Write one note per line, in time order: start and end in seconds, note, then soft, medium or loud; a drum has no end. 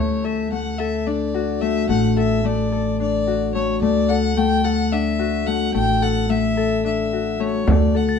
0.00 1.85 D2 medium
0.00 0.51 A3 medium
0.00 1.13 C#4 medium
0.00 2.03 E4 medium
0.00 1.22 G4 medium
0.00 0.26 C#5 medium
0.24 0.79 A4 medium
0.24 0.52 E5 medium
0.52 1.61 A3 medium
0.52 0.80 F#5 medium
0.78 2.17 A4 medium
0.78 1.09 E5 medium
1.07 2.99 D4 medium
1.07 1.63 D5 medium
1.34 3.27 F#4 medium
1.62 1.89 A3 medium
1.62 1.88 E5 medium
1.89 3.78 A1 medium
1.89 2.44 A3 medium
1.89 2.15 F#5 medium
2.17 2.72 A4 medium
2.17 2.47 E5 medium
2.44 3.55 A3 medium
2.44 3.00 D5 medium
2.72 4.10 A4 medium
3.00 4.92 D4 medium
3.00 3.51 D5 medium
3.27 5.19 F#4 medium
3.54 3.82 A3 medium
3.54 3.80 C#5 medium
3.82 5.71 D2 medium
3.82 4.37 A3 medium
3.82 4.11 D5 medium
4.09 4.64 A4 medium
4.09 4.38 F#5 medium
4.37 5.47 A3 medium
4.37 4.66 G5 loud
4.65 6.02 A4 medium
4.65 4.94 F#5 medium
4.92 6.84 D4 medium
4.92 5.48 E5 medium
5.19 7.12 F#4 medium
5.47 5.74 A3 medium
5.47 5.74 F#5 medium
5.74 7.64 A1 medium
5.74 6.29 A3 medium
5.74 6.04 G5 medium
6.02 6.57 A4 medium
6.02 6.31 F#5 medium
6.29 7.39 A3 medium
6.29 6.84 E5 medium
6.57 7.94 A4 medium
6.84 8.19 D4 medium
6.84 7.42 E5 medium
7.13 8.19 F#4 medium
7.40 7.67 A3 medium
7.40 7.71 C#5 medium
7.67 8.19 D2 medium
7.67 8.19 A3 medium
7.67 7.98 D5 medium
7.67 frame drum medium
7.95 8.19 A4 medium
7.95 8.19 F#5 medium
8.09 8.19 A6 medium